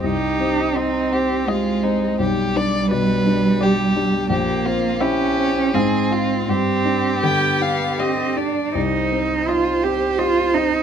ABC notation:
X:1
M:3/4
L:1/8
Q:1/4=83
K:Cm
V:1 name="Violin"
z2 e2 e2 | z2 d2 d2 | z2 =e2 f2 | z2 g f e d |
z2 e2 e2 |]
V:2 name="Violin"
G2 E G F E | G d =B2 G2 | G F G2 A F | G4- G z |
c6 |]
V:3 name="Cello"
E2 C2 A,2 | G,6 | B,2 _D2 C2 | C2 =B,2 C D |
E2 F G F E |]
V:4 name="Grand piano"
C,, C E C G C | =B,,, D =B,, D G D | B,,, C =E C A,, F | G,, D D, D G D |
C,, C E C G C |]